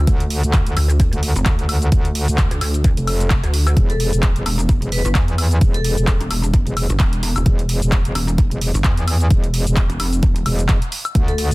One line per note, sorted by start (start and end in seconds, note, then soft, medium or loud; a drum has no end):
0.07 0.41 D2 loud
0.07 kick loud
0.07 closed hi-hat medium
0.07 shaker medium
0.20 closed hi-hat medium
0.20 shaker soft
0.30 open hi-hat loud
0.43 0.64 D2 loud
0.43 closed hi-hat soft
0.43 shaker medium
0.53 kick loud
0.53 clap loud
0.53 closed hi-hat medium
0.53 shaker medium
0.67 0.75 D2 loud
0.67 closed hi-hat medium
0.67 shaker soft
0.77 1.11 D2 loud
0.77 open hi-hat loud
0.77 high woodblock medium
0.90 closed hi-hat soft
0.90 shaker medium
1.00 kick loud
1.00 closed hi-hat medium
1.00 shaker medium
1.13 1.34 D2 loud
1.13 closed hi-hat medium
1.13 shaker soft
1.23 open hi-hat loud
1.36 1.44 F1 loud
1.36 closed hi-hat soft
1.36 shaker medium
1.46 1.90 D2 loud
1.46 kick loud
1.46 clap loud
1.46 closed hi-hat medium
1.46 shaker medium
1.59 closed hi-hat medium
1.59 shaker soft
1.69 open hi-hat loud
1.69 high woodblock medium
1.82 closed hi-hat soft
1.82 shaker medium
1.92 kick loud
1.92 closed hi-hat medium
1.92 shaker medium
2.05 closed hi-hat medium
2.05 shaker soft
2.15 open hi-hat loud
2.28 2.49 D2 medium
2.28 closed hi-hat soft
2.28 shaker medium
2.38 kick loud
2.38 clap loud
2.38 closed hi-hat medium
2.38 shaker medium
2.51 2.60 D2 medium
2.51 closed hi-hat medium
2.51 shaker soft
2.61 2.95 D2 loud
2.61 open hi-hat loud
2.61 high woodblock medium
2.74 closed hi-hat soft
2.74 shaker medium
2.84 kick loud
2.84 closed hi-hat medium
2.84 shaker medium
2.97 3.41 F1 loud
2.97 closed hi-hat medium
2.97 shaker soft
3.07 open hi-hat loud
3.07 high woodblock medium
3.20 closed hi-hat soft
3.20 shaker medium
3.30 kick loud
3.30 clap loud
3.30 closed hi-hat medium
3.30 shaker medium
3.43 3.75 D2 loud
3.43 closed hi-hat medium
3.43 shaker soft
3.54 open hi-hat loud
3.67 closed hi-hat soft
3.67 high woodblock medium
3.67 shaker medium
3.77 4.11 E1 loud
3.77 kick loud
3.77 closed hi-hat medium
3.77 shaker medium
3.90 3.96 A4 medium
3.90 closed hi-hat medium
3.90 shaker soft
4.00 4.08 A4 medium
4.00 open hi-hat loud
4.13 4.34 E1 loud
4.13 closed hi-hat soft
4.13 shaker medium
4.23 kick loud
4.23 clap loud
4.23 closed hi-hat medium
4.23 shaker medium
4.36 4.44 E1 loud
4.36 closed hi-hat medium
4.36 shaker soft
4.46 4.80 E1 loud
4.46 open hi-hat loud
4.46 high woodblock medium
4.59 closed hi-hat soft
4.59 shaker medium
4.69 kick loud
4.69 closed hi-hat medium
4.69 shaker medium
4.82 5.03 E1 loud
4.82 closed hi-hat medium
4.82 shaker soft
4.92 5.09 B4 medium
4.92 open hi-hat loud
5.05 5.13 G1 loud
5.05 closed hi-hat soft
5.05 shaker medium
5.15 5.60 E2 loud
5.15 kick loud
5.15 clap loud
5.15 closed hi-hat medium
5.15 shaker medium
5.28 closed hi-hat medium
5.28 shaker soft
5.38 open hi-hat loud
5.38 high woodblock medium
5.51 closed hi-hat soft
5.51 shaker medium
5.61 5.95 E1 loud
5.61 kick loud
5.61 closed hi-hat medium
5.61 shaker medium
5.74 6.20 A4 medium
5.74 closed hi-hat medium
5.74 shaker soft
5.84 open hi-hat loud
5.97 6.18 E1 loud
5.97 closed hi-hat soft
5.97 shaker medium
6.07 kick loud
6.07 clap loud
6.07 closed hi-hat medium
6.07 shaker medium
6.20 6.29 E1 medium
6.20 closed hi-hat medium
6.20 shaker soft
6.30 6.64 E1 loud
6.30 open hi-hat loud
6.30 high woodblock medium
6.44 closed hi-hat soft
6.44 shaker medium
6.54 kick loud
6.54 closed hi-hat medium
6.54 shaker medium
6.67 6.88 E1 loud
6.67 closed hi-hat medium
6.67 shaker soft
6.77 open hi-hat loud
6.77 high woodblock medium
6.90 6.98 G1 loud
6.90 closed hi-hat soft
6.90 shaker medium
7.00 7.34 E1 loud
7.00 kick loud
7.00 clap loud
7.00 closed hi-hat medium
7.00 shaker medium
7.13 closed hi-hat medium
7.13 shaker soft
7.23 open hi-hat loud
7.36 7.44 E1 medium
7.36 closed hi-hat soft
7.36 high woodblock medium
7.36 shaker medium
7.46 7.80 E1 loud
7.46 kick loud
7.46 closed hi-hat medium
7.46 shaker medium
7.59 closed hi-hat medium
7.59 shaker soft
7.69 open hi-hat loud
7.82 8.03 E1 loud
7.82 closed hi-hat soft
7.82 shaker medium
7.92 kick loud
7.92 clap loud
7.92 closed hi-hat medium
7.92 shaker medium
8.05 8.14 E1 loud
8.05 closed hi-hat medium
8.05 shaker soft
8.15 8.49 E1 loud
8.15 open hi-hat loud
8.15 high woodblock medium
8.28 closed hi-hat soft
8.28 shaker medium
8.38 kick loud
8.38 closed hi-hat medium
8.38 shaker medium
8.51 8.72 E1 loud
8.51 closed hi-hat soft
8.51 shaker soft
8.61 open hi-hat loud
8.74 8.83 G1 loud
8.74 closed hi-hat soft
8.74 shaker medium
8.84 9.29 E2 loud
8.84 kick loud
8.84 clap loud
8.84 closed hi-hat medium
8.84 shaker medium
8.97 closed hi-hat medium
8.97 shaker soft
9.08 open hi-hat loud
9.08 high woodblock medium
9.21 closed hi-hat soft
9.21 shaker medium
9.30 9.64 E1 loud
9.30 kick loud
9.30 closed hi-hat medium
9.30 shaker medium
9.44 closed hi-hat medium
9.44 shaker soft
9.54 open hi-hat loud
9.67 9.88 E1 loud
9.67 closed hi-hat soft
9.67 shaker medium
9.76 kick loud
9.76 clap loud
9.76 closed hi-hat medium
9.76 shaker medium
9.90 9.98 E1 loud
9.90 closed hi-hat medium
9.90 shaker soft
10.00 10.21 F1 loud
10.00 open hi-hat loud
10.00 high woodblock medium
10.13 closed hi-hat soft
10.13 shaker medium
10.23 10.44 E1 loud
10.23 kick loud
10.23 closed hi-hat medium
10.23 shaker medium
10.36 closed hi-hat medium
10.36 shaker soft
10.46 10.67 E1 medium
10.46 open hi-hat loud
10.46 high woodblock medium
10.59 closed hi-hat soft
10.59 shaker medium
10.69 10.80 E1 loud
10.69 kick loud
10.69 clap loud
10.69 closed hi-hat medium
10.69 shaker medium
10.82 closed hi-hat medium
10.82 shaker soft
10.92 open hi-hat loud
11.05 closed hi-hat soft
11.05 high woodblock medium
11.05 shaker medium
11.15 11.49 D2 loud
11.15 kick loud
11.15 closed hi-hat medium
11.15 shaker medium
11.28 11.35 A4 medium
11.28 closed hi-hat soft
11.28 shaker soft
11.38 11.47 A4 medium
11.38 open hi-hat loud
11.51 11.54 D2 medium
11.51 closed hi-hat soft